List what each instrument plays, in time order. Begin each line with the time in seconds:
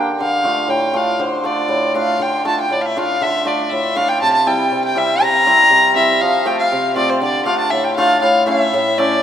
Already playing: hammered dulcimer D3
0.20 hammered dulcimer D3, violin F5
0.44 hammered dulcimer A3 D4 F4
0.68 hammered dulcimer A2, violin G5
0.93 hammered dulcimer A3 D4 F4, violin F5
1.19 hammered dulcimer D3, violin C5
1.44 hammered dulcimer A3 D4 F4, violin D5
1.68 hammered dulcimer A2
1.95 hammered dulcimer A3 D4 F4, violin F5
2.19 hammered dulcimer D3, violin G5
2.45 hammered dulcimer A3 D4 F4, violin A5
2.61 violin G5
2.70 hammered dulcimer A2, violin D5
2.81 violin F5
2.85 violin E5
2.96 hammered dulcimer A3 D4 F4, violin F5
3.21 hammered dulcimer D3, violin E5
3.45 hammered dulcimer A3 D4 F4, violin D5
3.70 hammered dulcimer A2, violin E5
3.96 hammered dulcimer A3 D4 F4, violin F5
4.09 violin G5
4.22 hammered dulcimer C3, violin A5
4.33 violin A5
4.46 hammered dulcimer G3 C4 E4, violin G5
4.72 hammered dulcimer C3
4.85 violin G5
4.95 hammered dulcimer G3 C4 E4, violin E5
5.21 hammered dulcimer C3, violin A#5
5.46 hammered dulcimer G3 C4 E4
5.70 hammered dulcimer C3
5.95 hammered dulcimer G3 C4 E4, violin E5
6.21 hammered dulcimer F3, violin F5
6.45 hammered dulcimer A3 C4 F4, violin G5
6.59 violin F5
6.72 hammered dulcimer C3
6.95 hammered dulcimer A3 C4 F4, violin D5
7.10 violin C5
7.22 hammered dulcimer D3, violin D5
7.45 hammered dulcimer A3 D4 F4, violin F5
7.59 violin A5
7.70 hammered dulcimer A2, violin E5
7.84 violin G5
7.96 hammered dulcimer A3 D4 F4, violin F5
8.21 hammered dulcimer A2, violin F5
8.47 hammered dulcimer A3 C#4 E4, violin E5
8.74 hammered dulcimer A2
8.98 hammered dulcimer A3 C#4 E4, violin D5